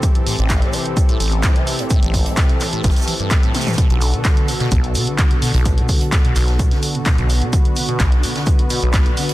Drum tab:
HH |x-x-o-x-x-x-o-x-x-x-o-x-x-x-o-x-|x-x-o-x-x-x-o-x-x-x-o-x-x-x-o-x-|x-x-o-x-x-x-o-x-x-x-o-x-x-x-o-x-|x-x-o-x-x-x-o-x-x-x-o-x-x-x-o-x-|
SH |x---x---x---x---x---x---x---x---|x---x---x---x---xxxxx---x---xxxx|x---x---x---x---x---x---x---x---|x---x---x---x---x---x---x---x---|
CP |--------x---------------x-------|--------x---x-----------x-------|--------x---------------x-------|--------x---x-----------x-------|
SD |--------o---------------o-------|--------o-------oooo----o---oooo|--------o-----o---------o-------|--------o-----o---o-----o-------|
T1 |--------------------------------|----------------------------o---|--------------------------------|--------------------------------|
T2 |--------------------------------|------------------------------o-|--------------------------------|--------------------------------|
BD |o-------o-------o-------o-------|o---o---o-------o-------o-------|o-------o-------o-------o-------|o---o---o-------o-------o-------|

HH |x-x-o-x-x-x-o-x-x-x-o-x-x-x-o-x-|
SH |x---x---x---x---x---x---x---x---|
CP |--------x---------------x-------|
SD |--------o-----o---------o-------|
T1 |--------------------------------|
T2 |--------------------------------|
BD |o-------o-------o-------o-------|